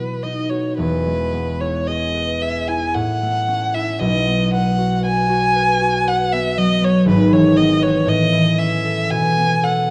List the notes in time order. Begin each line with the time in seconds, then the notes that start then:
Already playing: B2 B3 B4
0.23 D#4 D#5
0.50 F#4 C#5
0.77 E1 E2 B4
1.06 G#3
1.33 B3
1.60 E4 C#5
1.87 G#4 D#5
2.15 B4
2.42 G#4 E5
2.68 E4 G#5
2.94 A2 F#5
3.22 A3
3.48 C#4
3.74 E4 E5
3.99 B1 B2 D#5
4.27 B3
4.53 B4 F#5
4.78 F#4
5.04 B4 G#5
5.30 F#4
5.56 B4
5.81 F#4
6.07 B4 F#5
6.32 B3 E5
6.57 F#3 D#5
6.82 B3 C#5
7.05 G#1 G#2 B4
7.31 E3 C#5
7.57 B3 D#5
7.81 B4 C#5
8.06 A2 D#5
8.32 E3
8.58 C#4 E5
8.84 A4
9.10 B2 G#5
9.36 B3
9.63 A4 F#5